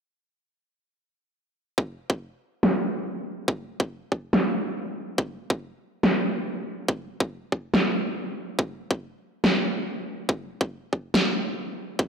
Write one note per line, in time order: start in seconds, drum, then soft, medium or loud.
1.78 kick loud
2.10 kick loud
2.63 snare loud
3.48 kick loud
3.80 kick loud
4.12 kick medium
4.33 snare loud
5.18 kick loud
5.50 kick loud
6.03 snare loud
6.88 kick loud
7.20 kick loud
7.52 kick medium
7.74 snare loud
8.59 kick loud
8.91 kick loud
9.44 snare loud
10.29 kick loud
10.61 kick medium
10.93 kick medium
11.14 snare loud
11.99 kick loud